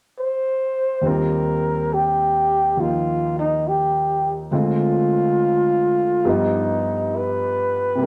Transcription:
0.19 flugelhorn C5
1.01 grand piano D#2 D#3 G3 C4
1.06 grand piano F4, flugelhorn A#4
1.94 flugelhorn G4
2.77 grand piano D#3 F3 A#3 D#4, flugelhorn F4
3.39 flugelhorn D#4
3.68 flugelhorn G4
4.51 grand piano D2 D3 G#3 C4 F4, flugelhorn F4
6.25 grand piano G2 F3 G3 B3 D#4 F4
6.29 flugelhorn D#4
7.16 flugelhorn B4
7.95 grand piano C3 G3
8.01 grand piano A#3

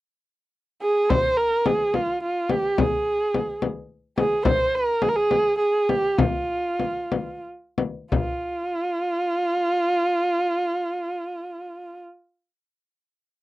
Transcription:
0.82 kamancheh G#4
1.10 kamancheh C5, frame drum
1.37 kamancheh A#4
1.66 kamancheh G#4, frame drum
1.94 kamancheh F4, frame drum
2.23 kamancheh F4
2.50 kamancheh G4, frame drum
2.78 kamancheh G#4, frame drum
3.34 frame drum
3.62 frame drum
4.18 kamancheh G#4, frame drum
4.45 kamancheh C5, frame drum
4.75 kamancheh A#4
5.02 kamancheh G#4, frame drum
5.09 kamancheh A#4
5.17 kamancheh G#4
5.31 frame drum
5.59 kamancheh G#4
5.89 kamancheh G4, frame drum
6.18 kamancheh F4, frame drum
6.80 frame drum
7.12 frame drum
7.78 frame drum
8.12 kamancheh F4, frame drum

